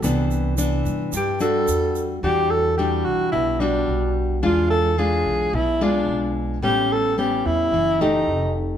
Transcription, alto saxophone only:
X:1
M:4/4
L:1/16
Q:1/4=109
K:Em
V:1 name="Alto saxophone"
z8 G2 A4- A z | G2 A2 G2 F2 E2 D4 z2 | =F2 A2 ^G4 E2 D4 z2 | G2 A2 G2 E4 ^D4 z2 |]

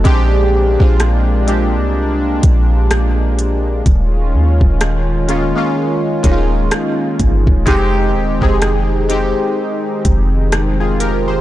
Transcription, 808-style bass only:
X:1
M:4/4
L:1/16
Q:"Swing 16ths" 1/4=63
K:Fm
V:1 name="808-style bass" clef=bass
B,,,3 B,,,4 C,,3 B,,,6 | E,,,2 E,, E,,,4 z3 E,,,2 z2 G,,, E,,, | F,,,2 E,,, F,,,4 z3 F,,,6 |]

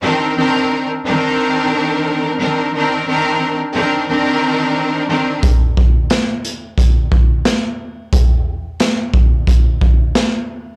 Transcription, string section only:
X:1
M:4/4
L:1/8
Q:"Swing 16ths" 1/4=89
K:Cm
V:1 name="String section"
[E,CDB] [E,CDB] z [E,CDB]4 [E,CDB] | [E,CDB] [E,CDB] z [E,CDB] [E,CDB]3 [E,CDB] | z8 | z8 |]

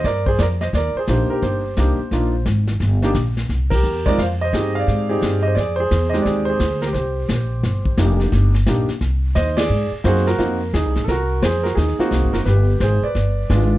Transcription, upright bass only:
X:1
M:4/4
L:1/8
Q:"Swing" 1/4=174
K:Cm
V:1 name="Upright bass" clef=bass
G,,2 F,,2 E,, z B,,, z | G,,,2 C,, z B,,,2 A,,,2 | G,,,2 B,,,2 C,,2 =E,,2 | F,,2 G,,2 A,,2 G,,2 |
F,,2 =E,,2 _E,,2 D,,2 | C,,2 B,,,2 G,,,2 F,,,2 | G,,,2 B,,, z C,,2 E,,2 | A,, z _G,,2 F,,2 (3E,, C,, A,,, |
C,,2 F,,2 E,, z (3C,, A,,, _G,,, | G,,,2 A,,, z G,,,2 A,,,2 |]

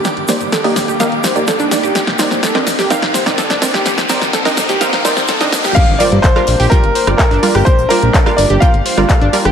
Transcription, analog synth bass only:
X:1
M:4/4
L:1/16
Q:1/4=126
K:Gm
V:1 name="Analog synth bass" clef=bass
z G,,, z G,,, z2 E,,, E,,, z E,,, z E,,, z E,,, z E,,, | z C,, z G,,, z2 E,, E,, z C,, z C,, z C,, z C,, | z E,, z E,, z2 C,, C,, z C,, z C,, z C,, z C,, | z G,,, z G,, z2 B,,, B,,, z G,,, z G,,, z G,,, z G,,, |
z B,,, z B,,, z2 G,,, G,,, z G,,, z G,,, z G,,, z G,,, |]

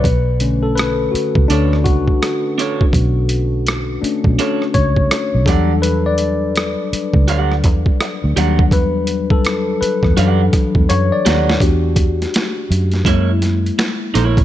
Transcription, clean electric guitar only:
X:1
M:4/4
L:1/8
Q:"Swing 16ths" 1/4=83
K:Bm
V:1 name="Clean electric guitar"
z4 [DAc] z2 [DAc] | z4 [DAc] z2 [Gdf] | z4 [Gdf] z2 [Gdf] | z4 [Gdf] z2 [Gdf] |
z4 [E^Ac] z2 [EAc] |]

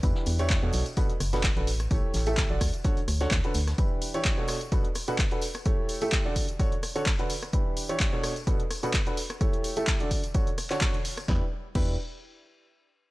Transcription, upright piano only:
X:1
M:4/4
L:1/16
Q:"Swing 16ths" 1/4=128
K:Edor
V:1 name="Upright piano"
[E,DEGB]3 [E,DEGc]2 [B,,DFAc]2 z [B,,DFAB] z2 [B,,DFAB] z [DFAB] z2 | [A,EGAc]3 [A,EGAe]2 [D,DFAd]2 z [D,DFAc] z2 [D,DFAc] z [D,DFAB] z2 | [E,DEGB]3 [E,DEGc]2 [B,,DFAc]2 z [B,,DFAB] z2 [B,,DFAB] z [DFAB] z2 | [A,EGAc]3 [A,EGAe]2 [D,DFAd]2 z [D,DFAc] z2 [D,DFAc] z [D,DFAB] z2 |
[E,DEGB]3 [E,DEGc]2 [B,,DFAc]2 z [B,,DFAB] z2 [B,,DFAB] z [DFAB] z2 | [A,EGAc]3 [A,EGAe]2 [D,DFAd]2 z [D,DFAc] z2 [D,DFAc] [DFAc] z3 | [DEGB] z3 [DEGB]2 z8 z2 |]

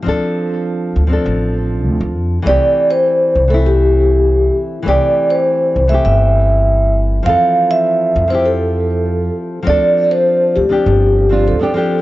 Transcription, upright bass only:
X:1
M:4/4
L:1/16
Q:1/4=100
K:C
V:1 name="Upright bass" clef=bass
D,, z4 z D,, z A,,,4 D,, D,, F,, z | C,, z4 z C,,8 z2 | C,, z4 z C,, z G,,,8 | F,, z4 z F,,8 z2 |
D,, z4 z D,, z G,,,4 D,, z3 |]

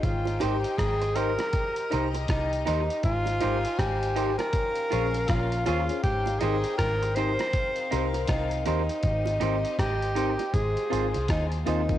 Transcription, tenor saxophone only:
X:1
M:4/4
L:1/16
Q:"Swing 16ths" 1/4=80
K:Ab
V:1 name="Tenor saxophone"
F2 G2 A2 B4- B z E2 E2 | F4 G3 B4- B F2 F2 | G2 A2 B2 c4- c z E2 E2- | E4 G4 A4 E2 E2 |]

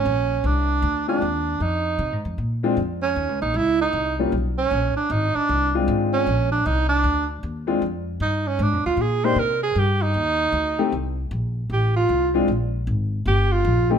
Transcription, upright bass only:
X:1
M:4/4
L:1/8
Q:"Swing" 1/4=154
K:Bbmix
V:1 name="Upright bass" clef=bass
B,,,2 C,,2 D,,2 E,,2 | F,,2 (3C, A,, F,, B,,2 F,,2 | (3E,, _D,, B,,, D,,2 C,,2 _C,,2 | B,,, z A,,, z C,,2 A,,,2 |
B,,,2 C,,2 D,,2 E,,2 | F,,2 G,,2 (3A,, F,, D,, B,,2 | C,2 G,,2 E,,2 D,,2 | C,,2 B,,,2 =A,,,2 C,,2 |
B,,,2 A,,,2 G,,,2 B,,,2 |]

